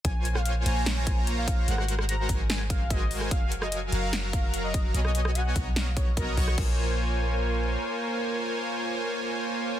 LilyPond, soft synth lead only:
\new Staff \with { instrumentName = "Soft synth lead" } { \time 4/4 \key bes \minor \tempo 4 = 147 aes''8. f''8 r16 aes''8 r16 aes''8 r8 f''8. | ges''8 r8 bes''8 r8 aes''16 r16 f''8 ees''8 r8 | f''8 r16 ees''8 r16 f''8 r16 f''8 r8 ees''8 r16 | dis''4 fis''8 r8 f''16 r16 cis''16 r16 ais'8 r8 |
bes'1~ | bes'1 | }